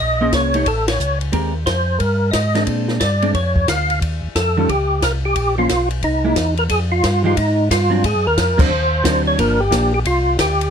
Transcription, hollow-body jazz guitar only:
0, 0, Header, 1, 2, 480
1, 0, Start_track
1, 0, Tempo, 335570
1, 1900, Time_signature, 4, 2, 24, 8
1, 15307, End_track
2, 0, Start_track
2, 0, Title_t, "Hollow-body jazz guitar"
2, 0, Program_c, 0, 26
2, 299, Note_on_c, 0, 58, 48
2, 308, Note_on_c, 0, 61, 52
2, 314, Note_on_c, 0, 72, 54
2, 320, Note_on_c, 0, 68, 49
2, 743, Note_off_c, 0, 58, 0
2, 747, Note_off_c, 0, 61, 0
2, 750, Note_off_c, 0, 72, 0
2, 753, Note_off_c, 0, 68, 0
2, 779, Note_on_c, 0, 57, 49
2, 788, Note_on_c, 0, 63, 56
2, 795, Note_on_c, 0, 67, 56
2, 801, Note_on_c, 0, 73, 57
2, 929, Note_off_c, 0, 57, 0
2, 934, Note_off_c, 0, 63, 0
2, 937, Note_off_c, 0, 67, 0
2, 940, Note_off_c, 0, 73, 0
2, 1894, Note_on_c, 0, 56, 51
2, 1898, Note_on_c, 0, 60, 50
2, 1906, Note_on_c, 0, 67, 51
2, 1911, Note_on_c, 0, 70, 55
2, 2173, Note_off_c, 0, 56, 0
2, 2175, Note_off_c, 0, 60, 0
2, 2179, Note_off_c, 0, 67, 0
2, 2181, Note_off_c, 0, 70, 0
2, 3644, Note_on_c, 0, 56, 52
2, 3650, Note_on_c, 0, 60, 54
2, 3653, Note_on_c, 0, 62, 55
2, 4263, Note_off_c, 0, 56, 0
2, 4266, Note_off_c, 0, 60, 0
2, 4267, Note_off_c, 0, 62, 0
2, 4617, Note_on_c, 0, 60, 51
2, 4621, Note_on_c, 0, 56, 54
2, 4634, Note_on_c, 0, 62, 55
2, 4766, Note_off_c, 0, 60, 0
2, 4768, Note_off_c, 0, 56, 0
2, 4775, Note_off_c, 0, 62, 0
2, 6541, Note_on_c, 0, 51, 55
2, 6544, Note_on_c, 0, 55, 63
2, 6560, Note_on_c, 0, 61, 60
2, 6560, Note_on_c, 0, 65, 63
2, 6689, Note_off_c, 0, 51, 0
2, 6690, Note_off_c, 0, 55, 0
2, 6698, Note_off_c, 0, 61, 0
2, 6698, Note_off_c, 0, 65, 0
2, 7980, Note_on_c, 0, 53, 49
2, 7993, Note_on_c, 0, 58, 54
2, 7995, Note_on_c, 0, 61, 57
2, 8128, Note_off_c, 0, 53, 0
2, 8135, Note_off_c, 0, 58, 0
2, 8136, Note_off_c, 0, 61, 0
2, 8932, Note_on_c, 0, 56, 45
2, 8941, Note_on_c, 0, 58, 47
2, 8946, Note_on_c, 0, 64, 52
2, 9084, Note_off_c, 0, 56, 0
2, 9089, Note_off_c, 0, 58, 0
2, 9092, Note_off_c, 0, 64, 0
2, 10357, Note_on_c, 0, 53, 69
2, 10367, Note_on_c, 0, 56, 64
2, 10376, Note_on_c, 0, 67, 68
2, 10378, Note_on_c, 0, 63, 73
2, 10518, Note_off_c, 0, 53, 0
2, 10523, Note_off_c, 0, 56, 0
2, 10527, Note_off_c, 0, 67, 0
2, 10528, Note_off_c, 0, 63, 0
2, 11299, Note_on_c, 0, 54, 50
2, 11313, Note_on_c, 0, 60, 61
2, 11322, Note_on_c, 0, 62, 60
2, 11469, Note_off_c, 0, 54, 0
2, 11476, Note_off_c, 0, 60, 0
2, 11481, Note_off_c, 0, 62, 0
2, 12269, Note_on_c, 0, 54, 59
2, 12273, Note_on_c, 0, 60, 63
2, 12288, Note_on_c, 0, 62, 62
2, 12434, Note_off_c, 0, 54, 0
2, 12436, Note_off_c, 0, 60, 0
2, 12443, Note_off_c, 0, 62, 0
2, 12928, Note_on_c, 0, 54, 57
2, 12932, Note_on_c, 0, 60, 62
2, 12944, Note_on_c, 0, 62, 66
2, 13412, Note_off_c, 0, 54, 0
2, 13416, Note_off_c, 0, 60, 0
2, 13418, Note_off_c, 0, 62, 0
2, 13418, Note_on_c, 0, 53, 57
2, 13421, Note_on_c, 0, 58, 60
2, 13435, Note_on_c, 0, 62, 65
2, 13696, Note_off_c, 0, 53, 0
2, 13697, Note_off_c, 0, 58, 0
2, 13704, Note_off_c, 0, 62, 0
2, 13886, Note_on_c, 0, 53, 53
2, 13892, Note_on_c, 0, 58, 59
2, 13907, Note_on_c, 0, 62, 61
2, 14169, Note_off_c, 0, 53, 0
2, 14173, Note_off_c, 0, 58, 0
2, 14180, Note_off_c, 0, 62, 0
2, 15307, End_track
0, 0, End_of_file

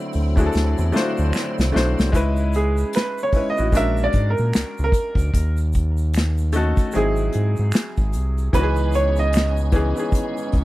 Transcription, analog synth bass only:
0, 0, Header, 1, 2, 480
1, 0, Start_track
1, 0, Key_signature, 4, "minor"
1, 0, Tempo, 800000
1, 1280, Time_signature, 4, 2, 24, 8
1, 6384, End_track
2, 0, Start_track
2, 0, Title_t, "Analog synth bass"
2, 0, Program_c, 0, 38
2, 91, Note_on_c, 0, 38, 94
2, 297, Note_off_c, 0, 38, 0
2, 331, Note_on_c, 0, 38, 99
2, 452, Note_off_c, 0, 38, 0
2, 473, Note_on_c, 0, 40, 83
2, 555, Note_off_c, 0, 40, 0
2, 713, Note_on_c, 0, 38, 74
2, 795, Note_off_c, 0, 38, 0
2, 954, Note_on_c, 0, 36, 93
2, 1035, Note_off_c, 0, 36, 0
2, 1053, Note_on_c, 0, 35, 103
2, 1173, Note_off_c, 0, 35, 0
2, 1196, Note_on_c, 0, 36, 83
2, 1276, Note_off_c, 0, 36, 0
2, 1286, Note_on_c, 0, 37, 105
2, 1706, Note_off_c, 0, 37, 0
2, 2002, Note_on_c, 0, 33, 49
2, 2059, Note_off_c, 0, 33, 0
2, 2156, Note_on_c, 0, 33, 90
2, 2236, Note_off_c, 0, 33, 0
2, 2241, Note_on_c, 0, 34, 107
2, 2452, Note_off_c, 0, 34, 0
2, 2490, Note_on_c, 0, 44, 89
2, 2611, Note_off_c, 0, 44, 0
2, 2636, Note_on_c, 0, 46, 74
2, 2716, Note_off_c, 0, 46, 0
2, 2736, Note_on_c, 0, 37, 44
2, 2789, Note_off_c, 0, 37, 0
2, 2876, Note_on_c, 0, 37, 100
2, 2956, Note_off_c, 0, 37, 0
2, 3098, Note_on_c, 0, 38, 96
2, 3186, Note_off_c, 0, 38, 0
2, 3207, Note_on_c, 0, 39, 114
2, 4042, Note_off_c, 0, 39, 0
2, 4175, Note_on_c, 0, 32, 101
2, 4380, Note_off_c, 0, 32, 0
2, 4412, Note_on_c, 0, 44, 88
2, 4532, Note_off_c, 0, 44, 0
2, 4555, Note_on_c, 0, 44, 76
2, 4636, Note_off_c, 0, 44, 0
2, 4793, Note_on_c, 0, 32, 92
2, 4892, Note_on_c, 0, 36, 83
2, 4901, Note_off_c, 0, 32, 0
2, 5098, Note_off_c, 0, 36, 0
2, 5125, Note_on_c, 0, 37, 112
2, 5961, Note_off_c, 0, 37, 0
2, 6326, Note_on_c, 0, 37, 91
2, 6384, Note_off_c, 0, 37, 0
2, 6384, End_track
0, 0, End_of_file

